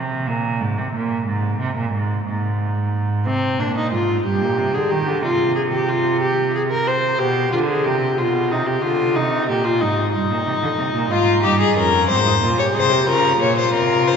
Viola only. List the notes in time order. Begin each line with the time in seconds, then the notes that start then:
3.26 C4
3.60 D4
3.77 D#4
3.93 F4
4.26 G4
4.75 G#4
4.91 G4
5.24 F4
5.56 G#4
5.73 G4
5.89 F4
6.22 G4
6.55 G#4
6.71 A#4
6.87 C5
7.19 G4
7.52 F4
7.68 G#4
7.85 G4
8.19 F4
8.51 D#4
8.67 G4
8.82 F4
9.16 D#4
9.49 G4
9.65 F4
9.81 D#4
10.13 D#4
11.12 F4
11.44 D#4
11.77 C#4
12.11 C4
12.26 D#4
12.42 F4
12.59 G4
12.75 G#4
12.92 G4
13.08 F4